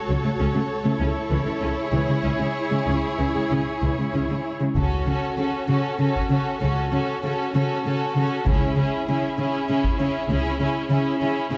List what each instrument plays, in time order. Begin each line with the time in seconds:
Already playing: viola section F#4, violin section A4 C#5
0.09 double bass section C#2, cello section C#3, viola section F#3
0.23 cello section C#3, viola section A3
0.39 double bass section C#2, cello section C#3, viola section C#4
0.54 cello section C#3, viola section A3
0.84 cello section C#3, viola section A3
1.00 double bass section C#2, cello section C#3, viola section C#4 E4, violin section C#5
1.31 double bass section C#2, cello section C#3, viola section E3
1.46 cello section C#3, viola section G#3
1.61 double bass section C#2, cello section C#3, viola section C#4
1.93 double bass section C#2, cello section C#3, viola section E3, violin section G#4
2.08 cello section C#3, viola section G#3
2.24 double bass section C#2, cello section C#3, viola section C#4
2.39 cello section C#3, viola section G#3
2.70 cello section C#3, viola section G#3
2.86 double bass section C#2, cello section C#3, viola section C#4
3.17 double bass section C#2, cello section C#3, viola section E3
3.34 cello section C#3, viola section G#3
3.50 double bass section C#2, cello section C#3, viola section C#4
3.82 double bass section C#2, cello section C#3, viola section E3
3.97 cello section C#3, viola section G#3
4.13 double bass section C#2, cello section C#3, viola section C#4
4.29 cello section C#3, viola section G#3
4.60 cello section C#3, viola section G#3
4.76 double bass section C#2, cello section C#3, viola section C#4, violin section F#4 A4, taiko
5.07 cello section C#3, viola section C#4, violin section F#4 A4
5.38 cello section C#3, viola section C#4, violin section F#4 A4
5.68 cello section C#3, viola section C#4, violin section F#4 A4
5.99 cello section C#3, viola section C#4, violin section F#4 A4
6.16 taiko
6.30 cello section C#3, viola section C#4, violin section F#4 A4
6.61 double bass section C#2, cello section C#3, viola section C#4, violin section F#4 A4
6.92 cello section C#3, viola section C#4, violin section F#4 A4
7.23 cello section C#3, viola section C#4, violin section F#4 A4
7.54 cello section C#3, viola section C#4, violin section F#4 A4
7.85 cello section C#3, viola section C#4, violin section F#4 A4
8.16 cello section C#3, viola section C#4, violin section F#4 A4
8.46 double bass section C#2, cello section C#3, viola section C#4, violin section E4 G#4, taiko
8.77 cello section C#3, viola section C#4, violin section E4 G#4
9.08 cello section C#3, viola section C#4, violin section E4 G#4
9.38 cello section C#3, viola section C#4, violin section E4 G#4
9.69 cello section C#3, viola section C#4, violin section E4 G#4
9.84 taiko
9.98 cello section C#3, viola section C#4, violin section E4 G#4
10.29 double bass section C#2, cello section C#3, viola section C#4, violin section E4 G#4
10.59 cello section C#3, viola section C#4, violin section E4 G#4
10.90 cello section C#3, viola section C#4, violin section E4 G#4
11.20 cello section C#3, viola section C#4, violin section E4 G#4
11.51 cello section C#3, viola section C#4, violin section E4 G#4